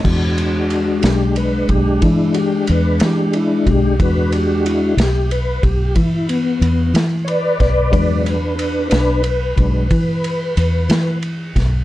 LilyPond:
<<
  \new Staff \with { instrumentName = "Tonewheel organ" } { \time 12/8 \key e \mixolydian \tempo 4. = 61 r4. <fis' g'>8 b'8 g'8 e'8 <fis' g'>8 b'8 g'8 e'8 <fis' g'>8 | b'8 g'8 e'8 g'8 b'8 g'8 e'8 b4 r8 <b' cis'' d''>8 <b' d''>8 | <b' d''>8 <d' b'>8 <d' b'>8 <d' b'>8 b'2. r4 | }
  \new Staff \with { instrumentName = "Tonewheel organ" } { \time 12/8 \key e \mixolydian <gis d' fis'>1. | <gis d' fis'>4. r1 r8 | <fis gis d'>8 r2 <fis gis d'>8 r2. | }
  \new Staff \with { instrumentName = "Fingered electric bass" } { \clef bass \time 12/8 \key e \mixolydian e,4. b,,4 b,,8 e4 e,8 e4 b,,8 | e,4. b,,4 b,,8 e4 e,8 e4 b,,8 | e,4. b,,4 b,,8 e4 e,8 e4 b,,8 | }
  \new DrumStaff \with { instrumentName = "Drums" } \drummode { \time 12/8 <cymc bd>8 cymr8 cymr8 <cymr sn>8 cymr8 <bd cymr>8 <bd cymr>8 cymr8 cymr8 <cymr sn>8 cymr8 <bd cymr>8 | <bd cymr>8 cymr8 cymr8 <cymr sn>8 cymr8 <bd cymr>8 <bd cymr>8 cymr8 cymr8 <cymr sn>8 cymr8 <bd cymr sn>8 | <bd cymr>8 cymr8 cymr8 <cymr sn>8 cymr8 <bd cymr>8 <bd cymr>8 cymr8 cymr8 <cymr sn>8 cymr8 <bd cymr sn>8 | }
>>